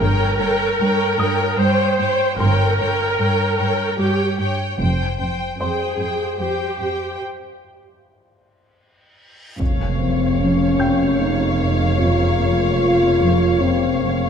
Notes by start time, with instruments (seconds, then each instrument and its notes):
Already playing: felt piano G6
0.00 double bass section G1, cello section G2, viola section A#4, violin section C#5 G5
0.39 cello section G2, violin section C#5 G5
0.79 cello section G2, violin section C#5 G5
1.19 cello section G2, violin section C#5 G5, felt piano D#6
1.59 cello section G2 G3, viola section C5, violin section C#5 G5
1.99 cello section G2, violin section C#5 G5
2.39 double bass section G1, cello section G2, viola section A#4, violin section C#5 G5, felt piano C6
2.79 cello section G2, violin section C#5 G5
3.18 cello section G2, violin section C#5 G5
3.59 cello section G2, violin section C#5 G5
4.00 cello section G2 G3, viola section G4, violin section C#5 G5
4.40 cello section G2, violin section C#5 G5
4.79 double bass section F1, cello section F2, violin section C5 G5
5.20 cello section F2, violin section C5 G5
5.59 cello section F2, viola section G#4, violin section C5 G5, felt piano C5 C6
6.00 cello section F2, violin section C5 G5
6.40 cello section F2 F3, viola section G4, violin section C5 G5
6.80 cello section F2, violin section C5 G5
7.20 reverse cymbal
9.60 double bass section F1, cello section F2, trombone section C#3 A#3, violin section C#5 F5, viola section C#5, impact
10.00 cello section F2, french horn section C4
10.40 cello section F2, french horn section C#4
10.80 cello section F2, felt piano G5 G6
11.19 cello section F2, french horn section D#4
11.61 cello section F2
12.00 cello section F2, french horn section F4
12.41 cello section F2
12.80 cello section F2
13.21 cello section F2
13.60 cello section F2, french horn section C4
14.01 cello section F2